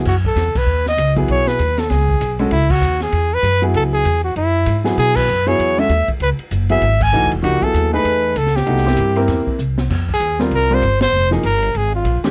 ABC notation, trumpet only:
X:1
M:4/4
L:1/8
Q:"Swing" 1/4=195
K:F#dor
V:1 name="Trumpet"
F A2 B2 d2 z | c B2 A G3 z | E F2 G2 B2 z | A G2 F E3 z |
G B2 c2 e2 z | B z2 e2 g2 z | F A2 B3 A =G- | =G6 z2 |
[K:Fm] z A2 z B c2 c- | c z B2 A F2 z |]